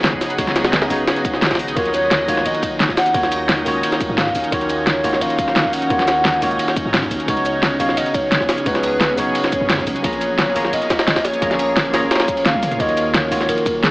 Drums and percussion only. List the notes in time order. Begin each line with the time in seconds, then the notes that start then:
0.04 snare, closed hi-hat, ride
0.13 kick
0.21 snare, open hi-hat, ride, shaker
0.30 closed hi-hat, ride, shaker
0.38 kick, closed hi-hat, ride
0.47 snare, closed hi-hat
0.56 snare, closed hi-hat, ride, shaker
0.64 snare, ride
0.73 snare, closed hi-hat, ride
0.82 snare, ride
0.90 open hi-hat, ride, shaker
1.07 snare, closed hi-hat, ride
1.16 closed hi-hat
1.25 kick, closed hi-hat, ride, shaker
1.34 snare
1.42 snare, closed hi-hat, ride, shaker
1.46 snare, ride
1.51 kick, snare, ride
1.55 snare, ride
1.59 open hi-hat, shaker
1.68 closed hi-hat, ride, shaker
1.76 kick, closed hi-hat, ride
1.85 closed hi-hat
1.94 closed hi-hat, ride, shaker
2.11 snare, closed hi-hat, ride
2.28 open hi-hat, ride, shaker
2.37 snare
2.46 closed hi-hat, ride
2.54 closed hi-hat
2.63 kick, closed hi-hat, ride, shaker
2.80 snare, closed hi-hat, ride
2.89 kick, snare
2.97 snare, open hi-hat, ride, shaker
3.06 closed hi-hat, shaker
3.14 kick, closed hi-hat, ride
3.23 snare, closed hi-hat
3.32 closed hi-hat, open hi-hat, shaker
3.49 snare, closed hi-hat, ride
3.58 ride
3.66 open hi-hat, ride, shaker
3.83 closed hi-hat, ride
3.92 snare, closed hi-hat
4.01 kick, closed hi-hat, ride, shaker
4.18 snare, closed hi-hat, ride
4.27 kick, snare
4.35 open hi-hat, ride, shaker
4.44 closed hi-hat, shaker
4.52 kick, closed hi-hat, ride
4.61 closed hi-hat
4.69 closed hi-hat, ride, shaker
4.87 snare, closed hi-hat, ride
5.04 open hi-hat, ride, shaker
5.13 snare
5.21 closed hi-hat, ride
5.30 closed hi-hat
5.39 kick, closed hi-hat, ride, shaker
5.48 snare
5.56 snare, closed hi-hat, ride
5.65 kick
5.73 open hi-hat, ride, shaker
5.82 closed hi-hat, shaker
5.90 kick, closed hi-hat, ride
5.99 snare, closed hi-hat
6.08 snare, closed hi-hat, ride, shaker
6.25 snare, closed hi-hat, ride
6.34 ride
6.42 open hi-hat, ride, shaker
6.51 shaker
6.59 closed hi-hat, ride
6.68 snare, closed hi-hat
6.76 kick, closed hi-hat, ride, shaker
6.94 snare, closed hi-hat, ride, shaker
7.03 kick, snare
7.11 open hi-hat, ride, shaker
7.20 closed hi-hat, shaker
7.28 kick, closed hi-hat, ride
7.37 closed hi-hat
7.45 closed hi-hat, ride, shaker
7.63 snare, closed hi-hat, ride
7.80 open hi-hat, ride, shaker
7.89 snare
7.97 closed hi-hat, ride
8.06 closed hi-hat
8.14 kick, closed hi-hat, ride, shaker
8.32 snare, closed hi-hat, ride
8.40 kick, snare
8.49 snare, open hi-hat, ride, shaker
8.58 closed hi-hat, shaker
8.66 kick, closed hi-hat, ride
8.75 snare, closed hi-hat
8.83 closed hi-hat, open hi-hat, shaker
9.00 snare, closed hi-hat, ride
9.10 ride
9.18 open hi-hat, ride, shaker
9.35 closed hi-hat, ride
9.44 snare, closed hi-hat
9.52 kick, closed hi-hat, ride, shaker
9.70 snare, closed hi-hat, ride
9.78 kick, snare
9.87 open hi-hat, ride, shaker
9.96 closed hi-hat, shaker
10.04 kick, closed hi-hat, ride
10.13 closed hi-hat
10.21 closed hi-hat, ride, shaker
10.38 snare, closed hi-hat, ride
10.56 open hi-hat, ride, shaker
10.65 snare
10.73 closed hi-hat, ride
10.82 closed hi-hat
10.90 kick, snare, closed hi-hat, ride, shaker
10.99 snare, ride
11.07 snare, closed hi-hat, ride
11.16 kick, snare, ride
11.25 snare, open hi-hat, ride, shaker
11.34 closed hi-hat, ride, shaker
11.42 kick, closed hi-hat, ride
11.51 snare, closed hi-hat
11.59 closed hi-hat, open hi-hat, shaker
11.76 snare, closed hi-hat, ride
11.85 ride
11.94 snare, open hi-hat, ride, shaker
12.11 snare, closed hi-hat, ride
12.15 snare, ride
12.20 snare, closed hi-hat, ride
12.28 kick, closed hi-hat, shaker
12.37 ride
12.45 snare, closed hi-hat, ride, shaker
12.54 kick, high tom
12.63 open hi-hat, mid tom, ride, shaker
12.71 closed hi-hat, mid tom, shaker
12.80 kick, closed hi-hat, ride
12.89 closed hi-hat
12.97 closed hi-hat, ride, shaker
13.14 snare, closed hi-hat, ride
13.32 open hi-hat, ride, shaker
13.40 snare, shaker
13.49 closed hi-hat, ride
13.58 closed hi-hat
13.66 kick, closed hi-hat, ride, shaker
13.83 snare, closed hi-hat, ride, shaker